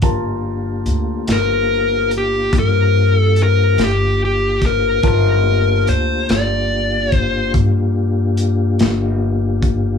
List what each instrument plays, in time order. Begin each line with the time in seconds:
0.02 upright bass G1, tonewheel organ A#3 D4 F4 G4, grand piano F4 A#4 A5, kick, closed hi-hat
0.86 upright bass D2, closed hi-hat
1.27 upright bass G1, snare, closed hi-hat
1.32 lead electric guitar A#4
2.11 closed hi-hat
2.18 lead electric guitar G4
2.53 upright bass G2, kick, closed hi-hat
2.59 lead electric guitar A#4
3.16 lead electric guitar A4
3.36 closed hi-hat
3.43 lead electric guitar A#4
3.77 upright bass G1, snare, closed hi-hat
3.84 lead electric guitar G4
4.25 lead electric guitar G4
4.61 kick, snare, closed hi-hat
4.66 lead electric guitar A#4
5.03 upright bass G1, tonewheel organ F#3 G#3 B3 D#4, grand piano F4 A#4 A5, kick, closed hi-hat
5.08 lead electric guitar A#4
5.43 tonewheel organ A#3 D4 F4 G4
5.87 upright bass D2, lead electric guitar C5, closed hi-hat
6.29 upright bass G1, lead electric guitar D5, snare, closed hi-hat
7.12 lead electric guitar C5, kick, closed hi-hat
7.54 upright bass G2, kick, closed hi-hat
8.37 closed hi-hat
8.79 upright bass G1, snare, closed hi-hat
9.62 kick, closed hi-hat